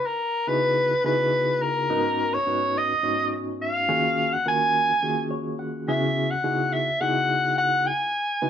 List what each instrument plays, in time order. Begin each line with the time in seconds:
0.06 soprano saxophone A#4
0.47 reed electric piano C#3 B3 D#4 E4 F#4 G#4, soprano saxophone B4
1.04 reed electric piano C#3 B3 D#4 E4 F#4 G#4, soprano saxophone B4
1.62 soprano saxophone A#4
1.90 reed electric piano G#2 B3 C#4 D#4 F#4 A#4
2.34 soprano saxophone C#5
2.47 reed electric piano G#2 B3 C#4 D#4 F#4 B4
2.77 soprano saxophone D#5
3.03 reed electric piano G#2 B3 C#4 D#4 F#4 C#5
3.62 soprano saxophone F5
3.88 reed electric piano D#3 A#3 C#4 F4 F#4 G#4
4.33 soprano saxophone F#5
4.46 reed electric piano D#3 A#3 C#4 F4 F#4 A#4, soprano saxophone G#5
5.03 reed electric piano D#3 A#3 C#4 F4 F#4 G#4
5.31 reed electric piano C#5
5.59 reed electric piano F#5
5.88 reed electric piano C#3 B3 C#4 E4 F#4 G#4, soprano saxophone E5
6.31 soprano saxophone F#5
6.44 reed electric piano C#3 B3 D#4 E4 F#4 G#4
6.73 soprano saxophone E5
7.01 reed electric piano C#3 B3 D#4 E4 F#4 G#4, soprano saxophone F#5
7.58 soprano saxophone F#5
7.87 soprano saxophone G#5
8.42 reed electric piano C#3 B3 D#4 E4 F#4 B4